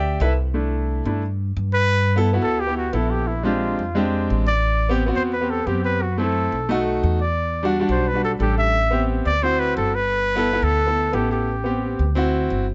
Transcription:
Already playing: upright bass D2, grand piano G4 D5 E5 G5
0.20 upright bass C2, grand piano E4 A4 B4 E5
0.54 grand piano A3 D4 E4
1.05 upright bass G2, grand piano A3 D4 E4
1.57 upright bass G2
1.74 trumpet B4
2.16 grand piano B3 E4 A4
2.33 grand piano B3 E4 F#4
2.42 trumpet A4
2.60 trumpet G4
2.67 grand piano B3 E4 G4
2.77 trumpet F#4
2.93 upright bass A#1, grand piano B3 E4 A4, trumpet E4
3.10 trumpet G4
3.27 trumpet E4
3.43 grand piano G#3 C4 D4 G4, trumpet F4
3.79 upright bass F2
3.95 grand piano G#3 C4 D4 G4
4.30 upright bass A1
4.47 trumpet D5
4.89 grand piano B3 C4 G4
5.06 grand piano B3 C4 F#4
5.15 upright bass E2, trumpet C5
5.33 trumpet B4
5.41 grand piano B3 C4 G4
5.50 trumpet A4
5.66 upright bass F#2, grand piano B3 C4 G4, trumpet G4
5.84 trumpet B4
6.02 trumpet F#4
6.18 grand piano A3 C4 E4, trumpet A4
6.52 upright bass B1
6.69 grand piano A3 D#4 F#4
7.03 upright bass E2
7.21 trumpet D5
7.63 grand piano G3 D4 F#4
7.80 grand piano G3 D4 F#4
7.89 upright bass B1, trumpet C5
8.08 trumpet B4
8.13 grand piano G3 D4 F#4
8.24 trumpet A4
8.39 upright bass A1, grand piano G3 D4 A4, trumpet G4
8.58 trumpet E5
8.91 grand piano B3 C4 G4
9.25 upright bass D2, trumpet D5
9.42 grand piano C4 E4 F#4, trumpet C5
9.59 trumpet B4
9.77 upright bass G1, trumpet A4
9.95 trumpet B4
10.36 grand piano B3 E4 A4
10.52 grand piano B3 E4 A4
10.62 upright bass D2, trumpet A4
10.87 grand piano B3 E4 A4
11.13 upright bass A1, grand piano B3 E4 A4, trumpet G4
11.31 trumpet G4
11.64 grand piano B3 C4 G4
11.99 upright bass D2
12.15 grand piano C4 E4 F#4
12.50 upright bass G1

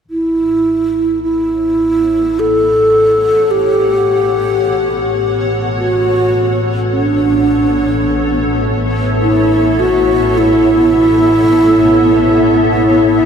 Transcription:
0.09 double bass section A1, ambient pad B3, alto flute E4
0.21 ambient pad A4
0.63 ambient pad C#5
1.23 alto flute E4
1.27 ambient pad F#5
2.40 alto flute A4
3.51 alto flute G4
5.78 alto flute F#4
6.91 alto flute D4
7.46 ambient pad E5
9.22 alto flute E4
9.80 alto flute F#4
10.38 alto flute E4
12.71 alto flute E4

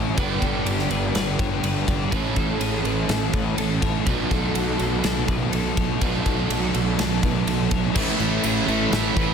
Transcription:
Already playing: fingered electric bass A1, overdriven electric guitar A2 E3 A3 C#4 E4 A4, clean electric guitar C#5
0.16 fingered electric bass G1, overdriven electric guitar G2 D3 G3 B3 D4 G4, clean electric guitar B4, kick, ride
0.41 fingered electric bass G1, overdriven electric guitar G3 B3 D4 G4, clean electric guitar A4, kick, ride
0.65 fingered electric bass G1, overdriven electric guitar G3 B3 D4 G4, clean electric guitar G4, ride
0.79 snare
0.90 fingered electric bass G1, overdriven electric guitar G3 B3 D4 G4, clean electric guitar B4, ride
1.14 fingered electric bass G1, overdriven electric guitar G2 D3 G3 B3 D4 G4, clean electric guitar B4, snare, ride
1.39 fingered electric bass G1, overdriven electric guitar G3 B3 D4 G4, clean electric guitar C#5, kick, ride
1.62 fingered electric bass G1, overdriven electric guitar G3 B3 D4 G4, clean electric guitar B4, ride
1.87 fingered electric bass G1, overdriven electric guitar G3 B3 D4 G4, clean electric guitar D5, kick, ride
2.11 fingered electric bass A1, overdriven electric guitar A2 E3 A3 C#4 E4 A4, clean electric guitar B4, kick, ride
2.35 fingered electric bass A1, overdriven electric guitar A3 C#4 E4 A4, clean electric guitar A4, kick, ride
2.59 fingered electric bass A1, overdriven electric guitar A3 C#4 E4 A4, clean electric guitar G#4, ride
2.84 fingered electric bass A1, overdriven electric guitar A3 C#4 E4 A4, clean electric guitar B4, ride
3.08 fingered electric bass A1, overdriven electric guitar A2 E3 A3 C#4 E4 A4, clean electric guitar A4, snare, ride
3.33 fingered electric bass A1, overdriven electric guitar A3 C#4 E4 A4, clean electric guitar B4, kick, ride
3.57 fingered electric bass A1, overdriven electric guitar A3 C#4 E4 A4, clean electric guitar A4, ride
3.81 fingered electric bass A1, overdriven electric guitar A3 C#4 E4 A4, clean electric guitar C#5, kick, ride
4.06 fingered electric bass B1, overdriven electric guitar B2 D#3 F#3 A3 B3 D#4 F#4 A4, clean electric guitar B4, kick, ride
4.30 fingered electric bass B1, overdriven electric guitar F#3 B3 D#4 A4, clean electric guitar A4, kick, ride
4.54 fingered electric bass B1, overdriven electric guitar F#3 B3 D#4 A4, clean electric guitar F#4, ride
4.78 fingered electric bass B1, overdriven electric guitar F#3 B3 D#4 A4, clean electric guitar A4, ride
5.03 fingered electric bass B1, overdriven electric guitar B2 D#3 F#3 B3 D#4 A4, clean electric guitar A4, snare, ride
5.27 fingered electric bass B1, overdriven electric guitar F#3 B3 D#4 A4, clean electric guitar B4, kick, ride
5.52 fingered electric bass B1, overdriven electric guitar F#3 B3 D#4 A4, clean electric guitar A4, ride
5.76 fingered electric bass B1, overdriven electric guitar F#3 B3 D#4 A4, clean electric guitar C#5, kick, ride
6.01 fingered electric bass B1, overdriven electric guitar B2 D#3 F#3 A3 B3 D#4 F#4 A4, clean electric guitar B4, kick, ride
6.26 fingered electric bass B1, overdriven electric guitar F#3 B3 D#4 A4, clean electric guitar A4, kick, ride
6.50 fingered electric bass B1, overdriven electric guitar F#3 B3 D#4 A4, clean electric guitar F#4, ride
6.73 fingered electric bass B1, overdriven electric guitar F#3 B3 D#4 A4, clean electric guitar A4, ride
6.97 fingered electric bass B1, overdriven electric guitar B2 D#3 F#3 B3 D#4 A4, clean electric guitar A4, snare, ride
7.22 fingered electric bass B1, overdriven electric guitar F#3 B3 D#4 A4, clean electric guitar B4, kick, ride
7.45 fingered electric bass B1, overdriven electric guitar F#3 B3 D#4 A4, clean electric guitar A4, ride
7.70 fingered electric bass B1, overdriven electric guitar F#3 B3 D#4 A4, clean electric guitar C#5, kick, ride
7.94 fingered electric bass A1, overdriven electric guitar A2 E3 A3 C#4 E4, clean electric guitar B4, kick, crash
8.20 fingered electric bass A1, overdriven electric guitar A3 C#4 E4, clean electric guitar A4, crash
8.43 fingered electric bass A1, overdriven electric guitar E3 A3 C#4 E4, clean electric guitar G#4, tambourine, crash
8.67 fingered electric bass A1, distorted electric guitar A2 E3 A3, overdriven electric guitar A3 C#4 E4, clean electric guitar A4, crash
8.91 fingered electric bass A1, overdriven electric guitar A2 E3 A3 C#4 E4, clean electric guitar A4, snare, crash
9.15 fingered electric bass A1, overdriven electric guitar A3 C#4 E4, clean electric guitar B4, kick, crash

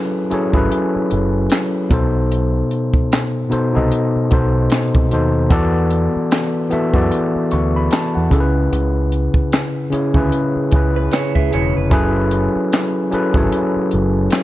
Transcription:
Already playing: tine electric piano F#3 C#4 E4 G#4 A4 B4
0.30 tine electric piano F#3 C#4 E4 G#4 A4 C#5, muted picked electric bass stroke, closed hi-hat
0.53 picked electric bass G#1, tine electric piano F#3 C#4 E4 G#4 A4, kick
0.57 tine electric piano B4
0.72 closed hi-hat
0.96 muted picked electric bass stroke
1.11 picked electric bass F#1, closed hi-hat
1.50 snare, clap, closed hi-hat
1.89 picked electric bass B1, tine electric piano B2 B3 D#4 A4, kick, closed hi-hat
1.94 tine electric piano C5
2.32 closed hi-hat
2.71 closed hi-hat
2.94 muted picked electric bass stroke, kick
3.12 snare, clap, closed hi-hat
3.49 tine electric piano B2 B3 D#4 A4 C5, muted picked electric bass stroke, closed hi-hat
3.73 picked electric bass C2, tine electric piano B2 B3 D#4 A4 D#5
3.92 closed hi-hat
4.16 muted picked electric bass stroke
4.30 picked electric bass B1, tine electric piano B2 B3 D#4 A4 C5, kick, closed hi-hat
4.70 snare, clap, closed hi-hat
4.95 picked electric bass C2, kick
5.11 picked electric bass D#2, tine electric piano B2 B3 D#4 A4 C5, closed hi-hat
5.49 picked electric bass E2, tine electric piano E3 B3 F#4 A4 D5, kick, closed hi-hat
5.91 closed hi-hat
6.16 muted picked electric bass stroke
6.31 snare, clap, closed hi-hat
6.70 tine electric piano E3 B3 F#4 A4 E5, muted picked electric bass stroke, closed hi-hat
6.92 picked electric bass F#2, tine electric piano E3 B3 F#4 G#4 D5, kick
7.02 tine electric piano A4
7.12 closed hi-hat
7.36 muted picked electric bass stroke
7.51 picked electric bass D2, tine electric piano C#6, closed hi-hat
7.76 tine electric piano B5
7.91 tine electric piano A5, snare, clap, closed hi-hat
8.15 picked electric bass E2, tine electric piano F#5
8.30 picked electric bass C#2, tine electric piano C#3 C#4 E4 G#4 A4, kick, closed hi-hat
8.40 tine electric piano B4
8.73 picked electric bass C#2, closed hi-hat
9.12 closed hi-hat
9.34 muted picked electric bass stroke, kick
9.52 snare, clap, closed hi-hat
9.90 tine electric piano C#3 C#4 E4 G#4 C#5, muted picked electric bass stroke, closed hi-hat
10.14 picked electric bass D2, tine electric piano C#3 C#4 E4 G#4 B4, kick
10.32 closed hi-hat
10.56 muted picked electric bass stroke
10.72 picked electric bass C#2, tine electric piano C#3 C#4 E4 G#4, kick, closed hi-hat
10.76 tine electric piano B4
10.96 clean electric guitar B4
11.11 clean electric guitar E4 C#5, snare, clap, closed hi-hat
11.35 picked electric bass C#2, clean electric guitar G#4 E5, kick
11.51 picked electric bass E1, tine electric piano C#3 C#4 E4 G#4 C#5, clean electric guitar E4 C#5, closed hi-hat
11.77 picked electric bass F1, clean electric guitar B4
11.90 picked electric bass F#1, tine electric piano F#3 C#4 E4 G#4 A4 B4, kick, closed hi-hat
12.31 closed hi-hat
12.56 muted picked electric bass stroke
12.73 snare, clap, closed hi-hat
13.11 tine electric piano F#3 C#4 E4 G#4 A4 B4, muted picked electric bass stroke, closed hi-hat
13.33 picked electric bass G#1, tine electric piano F#3 C#4 E4 G#4 A4, kick
13.37 tine electric piano C#5
13.52 closed hi-hat
13.77 muted picked electric bass stroke
13.91 picked electric bass F#1, closed hi-hat
14.31 snare, clap, closed hi-hat

